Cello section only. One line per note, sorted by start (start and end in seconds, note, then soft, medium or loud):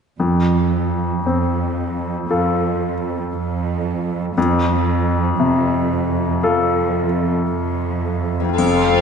0.20 1.13 F2 soft
1.24 2.16 F2 soft
2.29 3.21 F2 soft
3.33 4.25 F2 soft
4.37 5.27 F2 soft
5.39 6.30 F2 soft
6.43 7.35 F2 soft
7.48 8.45 F2 soft
8.58 9.01 F2 soft